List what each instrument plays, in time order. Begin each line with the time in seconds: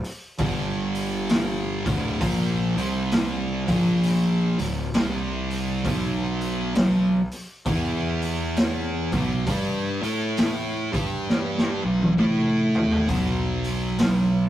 0.04 open hi-hat
0.38 picked electric bass G1, distorted electric guitar G2 D3 G3, kick, open hi-hat
0.95 open hi-hat
1.29 snare, open hi-hat
1.86 picked electric bass D1, distorted electric guitar D2 A2 D3, kick, open hi-hat
2.21 picked electric bass A#1, distorted electric guitar A#2 F3 A#3, kick, open hi-hat
2.77 picked electric bass C2, distorted electric guitar C3 G3 C4, open hi-hat
3.11 snare, open hi-hat
3.68 picked electric bass A#1, distorted electric guitar A#2 F3 A#3, kick, open hi-hat
4.03 open hi-hat
4.59 picked electric bass D1, distorted electric guitar D2 A2, open hi-hat
4.94 picked electric bass C2, distorted electric guitar C3 G3 C4, snare, open hi-hat
5.50 open hi-hat
5.85 picked electric bass B1, distorted electric guitar B2 F#3 B3, kick, open hi-hat
6.41 open hi-hat
6.75 picked electric bass B1, distorted electric guitar B2 F#3, snare, open hi-hat
7.31 open hi-hat
7.66 picked electric bass E2, distorted electric guitar E3 B3 E4, kick, open hi-hat
8.22 open hi-hat
8.56 snare, open hi-hat
9.12 picked electric bass B1, distorted electric guitar B2 F#3 B3, kick, open hi-hat
9.47 picked electric bass G2, distorted electric guitar G3 D4 G4, kick, open hi-hat
10.02 picked electric bass A2, distorted electric guitar A3 E4 A4, open hi-hat
10.37 snare, open hi-hat
10.93 picked electric bass G2, distorted electric guitar G3 D4 G4, kick, open hi-hat
11.29 snare
11.58 snare
11.83 picked electric bass B1, distorted electric guitar B2 F#3
12.01 high tom
12.17 picked electric bass A2, distorted electric guitar A3 E4 A4, mid tom
12.74 floor tom
12.91 floor tom
13.08 picked electric bass B1, distorted electric guitar B2 F#3 B3, kick, open hi-hat
13.64 open hi-hat
13.98 picked electric bass B1, distorted electric guitar B2 F#3, snare, open hi-hat